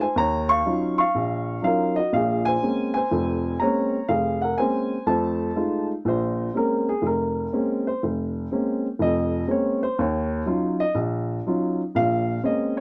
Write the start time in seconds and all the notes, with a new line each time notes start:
0.01 C5 G#5
0.16 D#2 C#5 A#5
0.49 F5 C#6
0.65 F#3 C#4 D#4 F4
0.98 F5 C#6
1.15 A#1
1.62 F#3 C#4 D#4 F4 A#4 F5
1.96 F#4 D#5
2.12 A#1 A#2 F5
2.16 G#4
2.45 C5 G#5
2.62 G#3 A#3 C4 C#4
2.94 C5 G#5
3.11 F1 F2
3.60 G#3 A#3 C4 C#4 C#5 A#5
4.08 F1 G#4 F5
4.42 A#4 F#5
4.58 G#3 A#3 C4 C#4 C5 G#5
5.06 F2 A3 C5 A5
5.55 G#3 A3 D#4 F4
6.05 A#1 A#2 C5
6.54 G#3 A#3 C4 C#4 A#4
6.89 G#4
7.02 F1
7.06 A#4
7.53 G#3 A#3 C4 C#4
7.87 C5
8.03 F1
8.51 G#3 A#3 C4 C#4
8.99 F1 F2 D#5
9.47 G#3 A#3 C4 C#4
9.51 C#5
9.83 C5
9.99 D#2 C#5
10.46 F#3 C#4 D#4 F4
10.80 D#5
10.95 A#1
11.47 F#3 C#4 D#4 F4
11.95 A#1 A#2 F5
12.43 G#3 A#3 C4 C#4 D#5
12.77 C#5